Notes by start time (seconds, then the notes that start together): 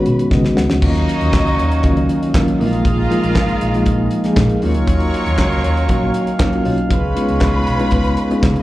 Already playing: D#3 G#3 B3 C#4 D#4 F4 F#4 B4 C#5 B5
0.06 B2, closed hi-hat
0.19 closed hi-hat
0.31 C#3 D#3 G#3 B3 C#4 F#4 D#5, kick, snare
0.45 snare
0.57 C#2 F#5, snare
0.70 C#2, snare
0.81 D#2 D#3 F#3 A#3 C#4 D#4 F4 F#4 C#5 D#5 F5, kick, crash
0.95 closed hi-hat
1.09 closed hi-hat
1.21 D#2, closed hi-hat
1.33 C#2, kick, snare, clap
1.47 closed hi-hat
1.58 D#2, closed hi-hat
1.72 closed hi-hat
1.83 C#2 D#3 F#3 A#3 C#4 F4, kick, closed hi-hat
1.97 closed hi-hat
2.09 closed hi-hat
2.23 closed hi-hat
2.34 D#3 F#3 A#3 C#4 F4, kick, snare, clap
2.48 closed hi-hat
2.59 A#1 F3 G#3 A#3 D#4 E4 F4 G#4 D#5 F5, open hi-hat
2.67 F4
2.73 closed hi-hat
2.85 A#1, kick, closed hi-hat
3.10 F3 G#3 A#3 D#4 F4, closed hi-hat
3.24 A#1, closed hi-hat
3.36 G#1, kick, snare, clap
3.49 closed hi-hat
3.61 A#1, closed hi-hat
3.74 F3 G#3 A#3 D#4 F4, closed hi-hat
3.86 A#1, kick, closed hi-hat
4.11 closed hi-hat
4.24 F3 G#3 A#3 D#4 G#4, snare, closed hi-hat
4.37 A#2, kick, snare, clap
4.50 closed hi-hat
4.61 D#2 D#3 F#3 A#3 C#4 D#4 F4 A#4 C#5 F5 C#6, open hi-hat
4.74 C#2, closed hi-hat
4.87 D#2, kick, closed hi-hat
5.00 closed hi-hat
5.14 closed hi-hat
5.26 D#2, closed hi-hat
5.38 C#2, kick, snare, clap
5.52 closed hi-hat
5.64 D#2, closed hi-hat
5.77 closed hi-hat
5.89 A#1 F#3 A#3 C#4 D#4 F#4, kick, closed hi-hat
6.14 closed hi-hat
6.27 closed hi-hat
6.39 F#3 A#3 C#4 D#4 F4, kick, snare, clap
6.53 closed hi-hat
6.64 B1 F#3 A#3 C#4 D#4 F4, open hi-hat
6.78 closed hi-hat
6.90 C#2 C#3 G#3 B3 F4 B4 C#5 B5, kick, closed hi-hat
7.15 G#3 B3 C#4 D#4 F4, closed hi-hat
7.29 C#2, closed hi-hat
7.41 C#2, kick, snare, clap
7.67 B1, closed hi-hat
7.79 G#3 B3 C#4 D#4 F4, closed hi-hat
7.91 C#2, kick, closed hi-hat
8.04 closed hi-hat
8.17 closed hi-hat
8.30 G#3 B3 C#4 D#4 F4, closed hi-hat
8.43 C#3, kick, snare, clap
8.56 closed hi-hat